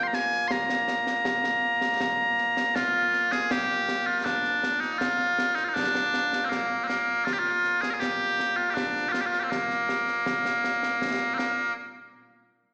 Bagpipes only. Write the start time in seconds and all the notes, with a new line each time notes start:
Already playing: A#2 A#3
0.03 C6
0.07 A#5
0.15 G#5
0.48 A#5 C6
2.76 F4
3.32 G#4
3.51 G4
4.07 F4
4.24 D4
4.80 D#4
4.98 F4
5.55 D#4
5.64 F4
5.68 D#4
5.74 D4
6.45 C4
6.49 A#3
6.84 A#3 C4
7.25 F4
7.33 G4
7.39 F4
7.81 G#4
7.90 G#4 A#4
7.99 G4
8.56 F4
8.70 D4 G4
9.09 F4 G4
9.21 G4
9.26 F4
9.40 C4 G4
9.50 A#3
11.34 A#3 C4